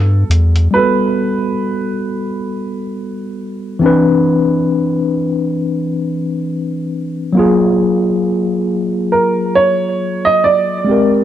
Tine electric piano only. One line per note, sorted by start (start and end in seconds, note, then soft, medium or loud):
0.00 0.24 G3 medium
0.00 0.25 B3 medium
0.00 0.26 F#4 medium
0.00 0.27 A4 medium
0.71 3.77 G3 medium
0.71 0.81 A#3 soft
0.75 3.79 F#4 soft
0.75 3.80 A4 medium
0.79 3.81 B3 medium
3.79 7.30 E3 medium
3.79 7.31 C4 medium
3.83 7.32 D4 medium
3.83 7.33 B4 medium
7.33 10.83 F#3 medium
7.33 10.84 A#3 medium
7.37 10.85 F4 medium
7.37 10.86 G#4 medium
10.84 11.24 G#3 medium
10.84 11.24 C4 medium
10.89 11.24 G4 medium
10.89 11.24 A#4 medium